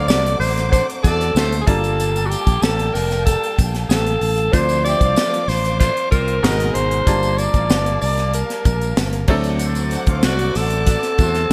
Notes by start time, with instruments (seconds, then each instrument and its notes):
Already playing: grand piano F#3 A3 C4 D4 A4, string section C5 F#5 D6
0.08 fingered electric bass C2, horn section A3 F#4 D5, alto saxophone D5, snare, tambourine
0.26 closed hi-hat
0.40 fingered electric bass A1, alto saxophone C5, open hi-hat, tambourine
0.57 snare, closed hi-hat, tambourine
0.71 horn section D4 C5 F#5, alto saxophone C5, kick, closed hi-hat, tambourine
0.89 closed hi-hat
1.03 fingered electric bass E2, horn section A3 F#4 D5, alto saxophone A4, kick, closed hi-hat, tambourine
1.21 snare, closed hi-hat
1.35 fingered electric bass D2, horn section A3 F#4 C5, snare, tambourine
1.52 closed hi-hat
1.61 alto saxophone G#4
1.66 fingered electric bass G1, grand piano G3 A#3 D4 F4 A5, alto saxophone A4, string section F5 G5 A5, kick, closed hi-hat
1.84 closed hi-hat, tambourine
2.00 closed hi-hat, tambourine
2.16 closed hi-hat, tambourine
2.26 alto saxophone F#4
2.30 alto saxophone G4, closed hi-hat, tambourine
2.47 fingered electric bass A#1, kick, closed hi-hat, tambourine
2.62 fingered electric bass A1, alto saxophone A4, snare, tambourine
2.79 closed hi-hat
2.93 fingered electric bass F1, alto saxophone A#4, snare, open hi-hat, tambourine
3.11 snare, closed hi-hat, tambourine
3.25 alto saxophone A4, kick, closed hi-hat, tambourine
3.43 closed hi-hat
3.59 fingered electric bass A#1, kick, closed hi-hat, tambourine
3.74 snare, closed hi-hat
3.89 fingered electric bass A1, alto saxophone A4, snare, tambourine
4.06 closed hi-hat
4.21 fingered electric bass A1, open hi-hat
4.37 closed hi-hat
4.52 fingered electric bass D2, grand piano F3 C4 D4 F4 C5, alto saxophone C5, string section C5 D6, kick, closed hi-hat, tambourine
4.69 closed hi-hat, tambourine
4.84 horn section G4 E5 G5, alto saxophone D5, closed hi-hat, tambourine
5.01 fingered electric bass C2, horn section D4 C5 F5, kick, closed hi-hat, tambourine
5.16 horn section A3 F4 D5, snare, tambourine
5.33 closed hi-hat
5.48 fingered electric bass A1, alto saxophone C5, snare, open hi-hat, tambourine
5.65 closed hi-hat, tambourine
5.79 horn section A3 F4 D5, alto saxophone C5, kick, closed hi-hat, tambourine
5.97 closed hi-hat
6.11 fingered electric bass C2, horn section C4 F4 C5, alto saxophone A#4, kick, closed hi-hat, tambourine
6.28 closed hi-hat
6.43 fingered electric bass G#1, grand piano B2 G#3 D#4 F#4 A#4, horn section B3 A#4 D#5, string section F#5 G#5 A#5, snare, tambourine
6.60 closed hi-hat
6.74 fingered electric bass G#1, alto saxophone C5, closed hi-hat
6.91 closed hi-hat
7.06 fingered electric bass G1, grand piano G3 A#3 D4 F4 A5, string section A#4 F5 A5, kick, closed hi-hat, tambourine
7.23 closed hi-hat, tambourine
7.38 alto saxophone D5, closed hi-hat, tambourine
7.54 fingered electric bass A1, kick, closed hi-hat, tambourine
7.70 fingered electric bass G1, snare, tambourine
7.86 closed hi-hat
8.01 fingered electric bass C2, alto saxophone D5, open hi-hat, tambourine
8.18 snare, closed hi-hat, tambourine
8.33 alto saxophone A#4, closed hi-hat, tambourine
8.50 snare, closed hi-hat
8.65 fingered electric bass A#1, kick, closed hi-hat, tambourine
8.81 closed hi-hat, tambourine
8.97 fingered electric bass G1, snare, tambourine
9.12 closed hi-hat
9.28 fingered electric bass D2, grand piano F#3 A3 C4 D4 A4, string section C5 F#5 D6, kick, crash
9.44 closed hi-hat, tambourine
9.59 closed hi-hat, tambourine
9.75 closed hi-hat, tambourine
9.91 horn section D4 C5 F#5, closed hi-hat, tambourine
10.06 fingered electric bass D2, horn section C5 F5, kick, closed hi-hat
10.23 fingered electric bass C2, horn section A3 F#4 D5, alto saxophone F#4, snare, tambourine
10.39 closed hi-hat
10.55 fingered electric bass A1, alto saxophone A4, snare, open hi-hat, tambourine
10.70 closed hi-hat, tambourine
10.86 horn section A3 F#4 D5, kick, closed hi-hat, tambourine
11.03 snare, closed hi-hat
11.18 fingered electric bass E2, horn section A3 F#4 C5, kick, closed hi-hat, tambourine
11.34 snare, closed hi-hat
11.50 horn section F#4